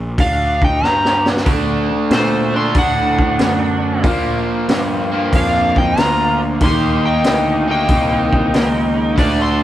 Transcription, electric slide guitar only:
0.20 0.62 F5 medium
0.65 0.85 G5 medium
0.85 1.27 A#5 medium
2.13 2.54 C5 medium
2.56 2.76 C6 medium
2.78 4.02 F#5 medium
5.35 5.76 F5 medium
5.78 5.99 G5 medium
5.99 6.40 A#5 medium
6.64 7.05 C6 medium
7.06 7.67 G5 medium
7.71 9.15 G5 medium
9.19 9.39 D5 medium
9.42 9.63 C6 medium

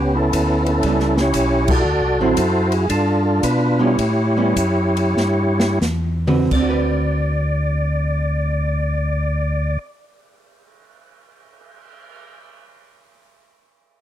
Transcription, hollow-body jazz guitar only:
0.84 1.14 G3 medium
0.84 1.15 B3 medium
0.84 1.15 C#4 medium
2.20 2.36 D3 medium
2.20 2.36 F#3 medium
2.20 2.36 C4 medium
2.20 2.36 E4 medium
3.79 3.96 G3 medium
3.79 3.96 B3 medium
3.79 3.97 C#4 medium
4.36 4.54 G3 medium
4.36 4.54 B3 medium
4.36 4.54 C#4 medium
6.27 6.43 D3 medium
6.27 6.49 C4 medium
6.27 6.49 F#4 medium
6.27 6.49 B4 medium
6.45 9.75 D3 medium
6.54 9.84 C4 medium
6.62 9.92 F#4 medium
6.70 10.00 B4 medium

